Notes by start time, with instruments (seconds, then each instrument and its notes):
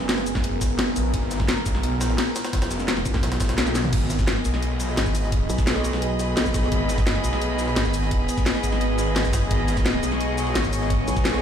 Already playing: detuned saw bass F#1, ambient pad B3 G#4 A#4
0.00 snare
0.09 snare, closed hi-hat
0.18 snare
0.26 closed hi-hat, shaker
0.35 kick, snare
0.44 closed hi-hat
0.61 kick, snare, closed hi-hat, shaker
0.79 snare, closed hi-hat
0.96 detuned saw bass A#1, closed hi-hat, open hi-hat, shaker
1.14 detuned saw bass G#1, kick, closed hi-hat
1.31 snare, closed hi-hat, shaker
1.40 kick, snare
1.49 snare, closed hi-hat
1.57 snare
1.66 detuned saw bass B1, kick, closed hi-hat, shaker
1.75 snare
1.83 closed hi-hat
2.01 snare, closed hi-hat, shaker
2.10 snare
2.18 snare, closed hi-hat
2.36 snare, closed hi-hat, open hi-hat, shaker
2.45 snare, closed hi-hat
2.53 detuned saw bass F#1, kick, snare, closed hi-hat
2.62 snare, closed hi-hat
2.71 snare, closed hi-hat, shaker
2.79 snare, shaker
2.88 snare, closed hi-hat
2.97 snare
3.06 wobble bass F#1, kick, closed hi-hat, shaker
3.14 kick, snare
3.23 detuned saw bass B1, snare, closed hi-hat
3.32 snare, closed hi-hat
3.40 kick, snare, closed hi-hat, shaker
3.49 snare, closed hi-hat
3.58 snare, closed hi-hat, shaker
3.67 snare, shaker
3.75 snare, closed hi-hat, open hi-hat, shaker
3.84 snare, mid tom
3.93 detuned saw bass G#1, ambient pad B3 G#4 D#5, string section G#4, kick, closed hi-hat, crash
4.10 snare, closed hi-hat, shaker
4.19 kick, snare, shaker
4.28 snare, closed hi-hat
4.33 string section D#5, snare
4.45 detuned saw bass B1, closed hi-hat, shaker
4.54 string section B5, snare
4.62 closed hi-hat
4.80 snare, closed hi-hat, shaker
4.89 snare
4.97 detuned saw bass G#1, snare, closed hi-hat, shaker
5.06 kick, shaker
5.15 open hi-hat, shaker
5.24 snare
5.32 kick, closed hi-hat
5.50 wobble bass B1, snare, closed hi-hat, shaker
5.58 kick, snare, shaker
5.67 snare, closed hi-hat
5.76 snare
5.85 closed hi-hat, shaker
5.93 snare
6.02 closed hi-hat
6.19 snare, closed hi-hat, shaker
6.37 wobble bass B1, snare, closed hi-hat, shaker
6.46 kick, shaker
6.54 kick, snare, closed hi-hat, open hi-hat, shaker
6.63 snare
6.72 detuned saw bass G#1, kick, closed hi-hat
6.89 snare, closed hi-hat, shaker
6.98 kick, snare, shaker
7.07 snare, closed hi-hat
7.15 snare
7.24 detuned saw bass B1, closed hi-hat, shaker
7.33 snare
7.42 closed hi-hat
7.59 snare, closed hi-hat, shaker
7.68 snare
7.76 detuned saw bass G#1, snare, closed hi-hat, shaker
7.85 kick, shaker
7.94 open hi-hat, shaker
8.03 snare
8.11 kick, closed hi-hat
8.29 snare, closed hi-hat, shaker
8.37 kick, snare, shaker
8.46 snare, closed hi-hat
8.55 snare
8.64 detuned saw bass G#1, closed hi-hat, shaker
8.72 snare
8.81 closed hi-hat
8.98 snare, closed hi-hat, shaker
9.16 snare, closed hi-hat, shaker
9.25 detuned saw bass G1, kick, shaker
9.33 kick, snare, closed hi-hat, open hi-hat, shaker
9.51 detuned saw bass G#1, ambient pad C#5, kick, closed hi-hat
9.68 snare, closed hi-hat, shaker
9.77 kick, snare, shaker
9.86 snare, closed hi-hat
9.94 snare
10.03 detuned saw bass B1, closed hi-hat, shaker
10.12 string section C#6, snare
10.21 closed hi-hat
10.38 snare, closed hi-hat, shaker
10.47 snare
10.55 detuned saw bass G#1, snare, closed hi-hat, shaker
10.64 kick, shaker
10.73 open hi-hat, shaker
10.82 snare
10.90 kick, closed hi-hat
11.08 wobble bass B1, snare, closed hi-hat, shaker
11.16 kick, snare, shaker
11.25 snare, closed hi-hat
11.34 snare